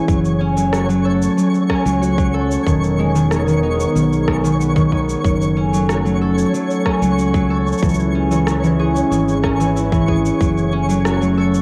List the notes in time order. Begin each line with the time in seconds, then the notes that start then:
Already playing: E3 C#4 E4 G#4 C#5 C#6
0.08 F#1 F#3 A3 C#4 A4, kick, shaker
0.25 shaker
0.41 C#4
0.57 F#3, shaker
0.73 F#4, cross-stick, shaker
0.89 F#3, shaker
1.05 A4
1.22 shaker
1.37 F#3, shaker
1.54 shaker
1.70 C#4, kick, cross-stick
1.85 C#2 F#3, shaker
2.02 F#4, shaker
2.18 F#3, kick, shaker
2.34 A4
2.51 shaker
2.66 E1 D#3 B3 D#4 G#4, kick, shaker
2.84 shaker
2.99 G#3
3.15 D#3, shaker
3.31 B3, cross-stick, shaker
3.47 D#3, shaker
3.63 D#4
3.80 shaker
3.95 B1 D#3, shaker
4.13 shaker
4.28 G#3, kick, cross-stick
4.44 D#3, shaker
4.60 B3, shaker
4.76 D#3, kick, shaker
4.92 D#4, kick
5.09 shaker
5.24 F#1 F#3 A3 C#4 A4, kick, shaker
5.42 shaker
5.57 C#4
5.73 F#3, shaker
5.89 F#4, cross-stick, shaker
6.05 F#3, shaker
6.21 A4
6.38 shaker
6.53 F#3, shaker
6.71 shaker
6.86 C#4, kick, cross-stick
7.02 C#2 F#3, shaker
7.18 F#4, shaker
7.34 F#3, kick, shaker
7.50 A4
7.67 shaker
7.73 shaker
7.78 shaker
7.82 C#2 E3 G#3 G#4, kick, shaker
7.89 shaker
7.94 shaker
8.00 shaker
8.15 C#4
8.31 E3, shaker
8.47 E4, cross-stick, shaker
8.64 E3, shaker
8.79 G#4
8.96 shaker
9.11 G#1 E3, shaker
9.28 shaker
9.44 C#4, kick, cross-stick
9.60 E3, shaker
9.76 E4, shaker
9.92 E3, kick, shaker
10.08 G#4, kick
10.26 shaker
10.40 F#1 F#3 A3 A4, kick, shaker
10.58 shaker
10.72 C#4
10.89 F#3, shaker
11.05 F#4, cross-stick, shaker
11.21 F#3, shaker
11.37 A4
11.54 shaker